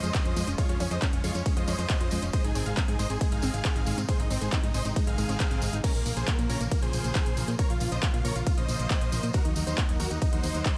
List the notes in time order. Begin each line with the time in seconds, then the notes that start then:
Already playing: C5 D#5
0.03 F2 G#3, closed hi-hat, tambourine
0.14 C#3 F3 G#3 C#4 F4, kick, clap, closed hi-hat, ride, tambourine
0.25 F2 C#3 F3 G#3 F4, closed hi-hat
0.36 F2 G#3, open hi-hat, tambourine
0.47 F1 C#3 F3 G#3 C#4 F4, closed hi-hat, tambourine
0.58 C#3 F3 G#3 F4 C#5, kick, closed hi-hat, ride, tambourine
0.69 F2 C#4 F4, closed hi-hat
0.80 F2 C#3 F3 G#3 C#4 F4, open hi-hat, tambourine
0.91 F2 G#3 C5 D#5, closed hi-hat, tambourine
1.02 C#3 F3 G#3 C#4 F4, kick, clap, closed hi-hat, ride
1.13 F1 C#3 F3 G#3 C#4 F4, closed hi-hat
1.24 F2 G#3 F4 C#5, open hi-hat, tambourine
1.35 F2 C#3 F3 G#3 C#4 F4, closed hi-hat, tambourine
1.46 C#3 F3 G#3 C#4 F4, kick, closed hi-hat, ride, tambourine
1.57 F2 F4 C5 D#5, closed hi-hat
1.68 F2 C#3 F3 G#3 C#4 F4, open hi-hat, tambourine
1.78 F2 G#3, closed hi-hat, tambourine
1.89 C#3 F3 G#3 C#4 F4, kick, clap, closed hi-hat, ride, tambourine
2.00 F2 C#3 F3 G#3 F4, closed hi-hat
2.11 F2 G#3, open hi-hat, tambourine
2.22 F1 C#3 F3 G#3 C#4 F4, closed hi-hat, tambourine
2.33 C3 D#3 G#3 D#4 C5 D#5, kick, closed hi-hat, ride, tambourine
2.44 G#1 D#4 G#4, closed hi-hat
2.55 G#1 C3 D#3 G#3 C4 D#4 G#4, open hi-hat, tambourine
2.66 G#1 G#3 G#4 F5, closed hi-hat, tambourine
2.77 C3 D#3 G#3 C4 D#4 G#4, kick, clap, closed hi-hat, ride, tambourine
2.88 G#2 C3 D#3 G#3 D#4 G#4, closed hi-hat
2.99 G#1 G#3 C5 D#5, open hi-hat, tambourine
3.10 G#1 C3 D#3 G#3 C4 D#4 G#4, closed hi-hat, tambourine
3.21 C3 D#3 G#3 D#4 G#4, kick, closed hi-hat, ride, tambourine
3.32 G#1 D#4 G#4 F5, closed hi-hat
3.42 G#1 C3 D#3 G#3 C4 D#4, open hi-hat, tambourine
3.54 G#1 G#3, closed hi-hat, tambourine
3.65 C3 D#3 G#3 C4 D#4, kick, clap, closed hi-hat, ride, tambourine
3.76 G#1 C3 D#3 G#3 D#4, closed hi-hat
3.86 G#1 G#3, open hi-hat, tambourine
3.97 G#2 C3 D#3 G#3 C4 D#4, closed hi-hat, tambourine
4.08 C3 D#3 G#3 D#4 G#4 C5, kick, closed hi-hat, ride, tambourine
4.19 G#1 D#4, closed hi-hat
4.30 G#1 C3 D#3 G#3 C4 D#4, open hi-hat, tambourine
4.41 G#1 G#3 G#4 C5, closed hi-hat, tambourine
4.52 C3 D#3 G#3 C4 D#4, kick, clap, closed hi-hat, ride, tambourine
4.63 G#2 C3 D#3 G#3 D#4, closed hi-hat
4.74 G#1 G#3 C5 D#5, open hi-hat, tambourine
4.85 G#1 C3 D#3 G#3 C4 D#4, closed hi-hat, tambourine
4.96 C3 D#3 G#3 D#4, kick, closed hi-hat, ride, tambourine
5.07 G#1 D#4 G#4 F5, closed hi-hat
5.18 G#1 C3 D#3 G#3 D#4, open hi-hat, tambourine
5.29 G#1 C4, closed hi-hat, tambourine
5.40 C3 D#3 G#3 C4 D#4, kick, clap, closed hi-hat, ride
5.51 G#1 C3 D#3 G#3 C4 D#4, closed hi-hat
5.62 G#1 G#3, open hi-hat, tambourine
5.73 G#1 C3 D#3 G#3 D#4, closed hi-hat, tambourine
5.84 C#3 F3 A#3 C#4 F4 A#4, kick, closed hi-hat, ride, tambourine, crash
5.95 A#1 A#3, closed hi-hat
6.06 A#1 C#3 F3 A#3 F4, open hi-hat, tambourine
6.17 A#1 G#4 C5, closed hi-hat, tambourine
6.27 C#3 F3 A#3 F4, kick, clap, closed hi-hat, ride, tambourine
6.39 A#2 C#3 F3 A#3 F4, closed hi-hat
6.50 A#1 C#4 A#4, open hi-hat, tambourine
6.60 A#1 C#3 F3 A#3 F4, closed hi-hat, tambourine
6.71 C#3 F3 A#3 F4, kick, closed hi-hat, ride, tambourine
6.82 A#1 G#4 C5, closed hi-hat
6.93 A#1 C#3 F3 A#3 F4, open hi-hat, tambourine
7.04 A#1, closed hi-hat, tambourine
7.15 C#3 F3 A#3 F4, kick, clap, closed hi-hat, ride, tambourine
7.26 A#1 C#3 F3 A#3 F4, closed hi-hat
7.37 A#1, open hi-hat, tambourine
7.47 A#2 C#3 F3 A#3 F4, closed hi-hat, tambourine
7.59 C#3 F3 A#3 F4 A#4 C#5, kick, closed hi-hat, ride, tambourine
7.70 A#1 F4, closed hi-hat
7.80 A#1 C#3 F3 A#3 F4, open hi-hat, tambourine
7.92 A#1 C5 D#5, closed hi-hat, tambourine
8.03 C#3 F3 A#3 F4, kick, clap, closed hi-hat, ride, tambourine
8.14 A#2 C#3 F3 A#3 F4, closed hi-hat
8.25 A#1 A#4 C#5, open hi-hat, tambourine
8.36 A#1 C#3 F3 A#3 F4, closed hi-hat, tambourine
8.47 C#3 F3 A#3 F4, kick, closed hi-hat, ride, tambourine
8.57 A#1 C5 D#5, closed hi-hat
8.68 A#1 C#3 F3 A#3 F4, open hi-hat, tambourine
8.79 A#1, closed hi-hat, tambourine
8.90 C#3 F3 A#3 F4, kick, clap, closed hi-hat, ride, tambourine
9.01 A#1 C#3 F3 A#3 F4, closed hi-hat
9.12 A#1, open hi-hat, tambourine
9.23 A#2 C#3 F3 A#3 F4, closed hi-hat, tambourine
9.33 D#3 F#3 A#3 F#4 A#4, kick, closed hi-hat, ride, tambourine
9.45 D#2 D#4, closed hi-hat
9.56 D#2 D#3 F#3 A#3 D#4 F#4, open hi-hat, tambourine
9.67 D#2 D#4 C5, closed hi-hat, tambourine
9.78 D#3 F#3 A#3 D#4 F#4, kick, clap, closed hi-hat, ride
9.89 D#1 D#3 F#3 A#3 D#4 F#4, closed hi-hat
10.00 D#2 F#4 A#4, open hi-hat, tambourine
10.11 D#2 D#3 F#3 A#3 D#4 F#4, closed hi-hat, tambourine
10.21 D#3 F#3 A#3 D#4 F#4, kick, closed hi-hat, ride, tambourine
10.33 D#2 D#4 C5, closed hi-hat
10.43 D#2 D#3 F#3 A#3 F#4, open hi-hat, tambourine
10.54 D#2, closed hi-hat, tambourine
10.65 D#3 F#3 A#3 F#4, kick, clap, closed hi-hat, ride